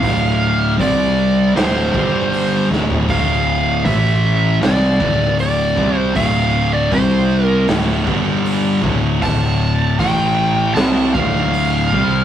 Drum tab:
HH |o---o---o---o---|o---o---o---o---|o---o---o---o---|o---o---o---o---|
SD |--------o-----o-|--------o--o----|--------o--o----|--------o--o----|
FT |---------------o|----------------|----------------|----------------|
BD |o---o-----o-----|o---o-----o---o-|o---o-----o---o-|o---o-----o---o-|